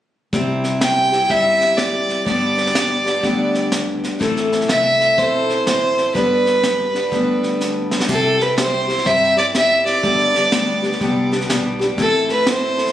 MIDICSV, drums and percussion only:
0, 0, Header, 1, 2, 480
1, 0, Start_track
1, 0, Key_signature, 0, "major"
1, 0, Tempo, 485830
1, 320, Time_signature, 4, 2, 24, 8
1, 12767, End_track
2, 0, Start_track
2, 0, Title_t, "Drums"
2, 325, Note_on_c, 9, 36, 101
2, 325, Note_on_c, 9, 38, 28
2, 424, Note_off_c, 9, 36, 0
2, 424, Note_off_c, 9, 38, 0
2, 630, Note_on_c, 9, 38, 27
2, 729, Note_off_c, 9, 38, 0
2, 803, Note_on_c, 9, 38, 98
2, 803, Note_on_c, 9, 44, 72
2, 902, Note_off_c, 9, 38, 0
2, 902, Note_off_c, 9, 44, 0
2, 1111, Note_on_c, 9, 38, 24
2, 1210, Note_off_c, 9, 38, 0
2, 1279, Note_on_c, 9, 38, 27
2, 1282, Note_on_c, 9, 36, 91
2, 1378, Note_off_c, 9, 38, 0
2, 1380, Note_off_c, 9, 36, 0
2, 1588, Note_on_c, 9, 38, 28
2, 1687, Note_off_c, 9, 38, 0
2, 1757, Note_on_c, 9, 38, 80
2, 1757, Note_on_c, 9, 44, 61
2, 1856, Note_off_c, 9, 38, 0
2, 1856, Note_off_c, 9, 44, 0
2, 2066, Note_on_c, 9, 38, 28
2, 2165, Note_off_c, 9, 38, 0
2, 2236, Note_on_c, 9, 38, 31
2, 2238, Note_on_c, 9, 36, 98
2, 2335, Note_off_c, 9, 38, 0
2, 2336, Note_off_c, 9, 36, 0
2, 2544, Note_on_c, 9, 38, 27
2, 2630, Note_off_c, 9, 38, 0
2, 2630, Note_on_c, 9, 38, 24
2, 2718, Note_off_c, 9, 38, 0
2, 2718, Note_on_c, 9, 38, 90
2, 2718, Note_on_c, 9, 44, 67
2, 2817, Note_off_c, 9, 38, 0
2, 2817, Note_off_c, 9, 44, 0
2, 3026, Note_on_c, 9, 38, 26
2, 3125, Note_off_c, 9, 38, 0
2, 3191, Note_on_c, 9, 38, 26
2, 3195, Note_on_c, 9, 36, 87
2, 3290, Note_off_c, 9, 38, 0
2, 3293, Note_off_c, 9, 36, 0
2, 3503, Note_on_c, 9, 38, 28
2, 3602, Note_off_c, 9, 38, 0
2, 3673, Note_on_c, 9, 38, 88
2, 3673, Note_on_c, 9, 44, 66
2, 3772, Note_off_c, 9, 38, 0
2, 3772, Note_off_c, 9, 44, 0
2, 3987, Note_on_c, 9, 38, 26
2, 4086, Note_off_c, 9, 38, 0
2, 4157, Note_on_c, 9, 36, 101
2, 4158, Note_on_c, 9, 38, 33
2, 4256, Note_off_c, 9, 36, 0
2, 4257, Note_off_c, 9, 38, 0
2, 4313, Note_on_c, 9, 38, 27
2, 4411, Note_off_c, 9, 38, 0
2, 4467, Note_on_c, 9, 38, 29
2, 4553, Note_off_c, 9, 38, 0
2, 4553, Note_on_c, 9, 38, 25
2, 4635, Note_off_c, 9, 38, 0
2, 4635, Note_on_c, 9, 38, 88
2, 4635, Note_on_c, 9, 44, 73
2, 4734, Note_off_c, 9, 38, 0
2, 4734, Note_off_c, 9, 44, 0
2, 4946, Note_on_c, 9, 38, 27
2, 5045, Note_off_c, 9, 38, 0
2, 5119, Note_on_c, 9, 36, 92
2, 5120, Note_on_c, 9, 38, 30
2, 5218, Note_off_c, 9, 36, 0
2, 5219, Note_off_c, 9, 38, 0
2, 5429, Note_on_c, 9, 38, 28
2, 5528, Note_off_c, 9, 38, 0
2, 5600, Note_on_c, 9, 38, 87
2, 5600, Note_on_c, 9, 44, 61
2, 5699, Note_off_c, 9, 38, 0
2, 5699, Note_off_c, 9, 44, 0
2, 5907, Note_on_c, 9, 38, 30
2, 6006, Note_off_c, 9, 38, 0
2, 6077, Note_on_c, 9, 36, 94
2, 6078, Note_on_c, 9, 38, 31
2, 6176, Note_off_c, 9, 36, 0
2, 6176, Note_off_c, 9, 38, 0
2, 6385, Note_on_c, 9, 38, 29
2, 6484, Note_off_c, 9, 38, 0
2, 6554, Note_on_c, 9, 38, 101
2, 6554, Note_on_c, 9, 44, 79
2, 6653, Note_off_c, 9, 38, 0
2, 6653, Note_off_c, 9, 44, 0
2, 6864, Note_on_c, 9, 38, 26
2, 6963, Note_off_c, 9, 38, 0
2, 7030, Note_on_c, 9, 38, 29
2, 7034, Note_on_c, 9, 36, 96
2, 7129, Note_off_c, 9, 38, 0
2, 7133, Note_off_c, 9, 36, 0
2, 7342, Note_on_c, 9, 38, 29
2, 7441, Note_off_c, 9, 38, 0
2, 7514, Note_on_c, 9, 38, 36
2, 7514, Note_on_c, 9, 44, 63
2, 7613, Note_off_c, 9, 38, 0
2, 7613, Note_off_c, 9, 44, 0
2, 7818, Note_on_c, 9, 38, 67
2, 7906, Note_off_c, 9, 38, 0
2, 7906, Note_on_c, 9, 38, 68
2, 7989, Note_off_c, 9, 38, 0
2, 7989, Note_on_c, 9, 38, 32
2, 7989, Note_on_c, 9, 49, 86
2, 7992, Note_on_c, 9, 36, 98
2, 8087, Note_off_c, 9, 38, 0
2, 8087, Note_off_c, 9, 49, 0
2, 8091, Note_off_c, 9, 36, 0
2, 8302, Note_on_c, 9, 38, 28
2, 8401, Note_off_c, 9, 38, 0
2, 8473, Note_on_c, 9, 38, 96
2, 8473, Note_on_c, 9, 44, 78
2, 8572, Note_off_c, 9, 38, 0
2, 8572, Note_off_c, 9, 44, 0
2, 8783, Note_on_c, 9, 38, 29
2, 8869, Note_off_c, 9, 38, 0
2, 8869, Note_on_c, 9, 38, 30
2, 8950, Note_off_c, 9, 38, 0
2, 8950, Note_on_c, 9, 38, 31
2, 8952, Note_on_c, 9, 36, 89
2, 9048, Note_off_c, 9, 38, 0
2, 9051, Note_off_c, 9, 36, 0
2, 9260, Note_on_c, 9, 38, 26
2, 9359, Note_off_c, 9, 38, 0
2, 9432, Note_on_c, 9, 38, 80
2, 9432, Note_on_c, 9, 44, 59
2, 9531, Note_off_c, 9, 38, 0
2, 9531, Note_off_c, 9, 44, 0
2, 9742, Note_on_c, 9, 38, 31
2, 9841, Note_off_c, 9, 38, 0
2, 9914, Note_on_c, 9, 36, 108
2, 9914, Note_on_c, 9, 38, 30
2, 10013, Note_off_c, 9, 36, 0
2, 10013, Note_off_c, 9, 38, 0
2, 10226, Note_on_c, 9, 38, 28
2, 10325, Note_off_c, 9, 38, 0
2, 10395, Note_on_c, 9, 38, 92
2, 10395, Note_on_c, 9, 44, 82
2, 10493, Note_off_c, 9, 38, 0
2, 10493, Note_off_c, 9, 44, 0
2, 10705, Note_on_c, 9, 38, 29
2, 10791, Note_off_c, 9, 38, 0
2, 10791, Note_on_c, 9, 38, 29
2, 10875, Note_off_c, 9, 38, 0
2, 10875, Note_on_c, 9, 38, 29
2, 10876, Note_on_c, 9, 36, 95
2, 10974, Note_off_c, 9, 38, 0
2, 10975, Note_off_c, 9, 36, 0
2, 11185, Note_on_c, 9, 38, 30
2, 11272, Note_off_c, 9, 38, 0
2, 11272, Note_on_c, 9, 38, 29
2, 11358, Note_off_c, 9, 38, 0
2, 11358, Note_on_c, 9, 38, 82
2, 11358, Note_on_c, 9, 44, 64
2, 11457, Note_off_c, 9, 38, 0
2, 11457, Note_off_c, 9, 44, 0
2, 11668, Note_on_c, 9, 38, 33
2, 11767, Note_off_c, 9, 38, 0
2, 11835, Note_on_c, 9, 38, 31
2, 11837, Note_on_c, 9, 36, 103
2, 11933, Note_off_c, 9, 38, 0
2, 11936, Note_off_c, 9, 36, 0
2, 12144, Note_on_c, 9, 38, 29
2, 12243, Note_off_c, 9, 38, 0
2, 12316, Note_on_c, 9, 38, 105
2, 12316, Note_on_c, 9, 44, 68
2, 12414, Note_off_c, 9, 38, 0
2, 12414, Note_off_c, 9, 44, 0
2, 12628, Note_on_c, 9, 38, 30
2, 12712, Note_off_c, 9, 38, 0
2, 12712, Note_on_c, 9, 38, 30
2, 12767, Note_off_c, 9, 38, 0
2, 12767, End_track
0, 0, End_of_file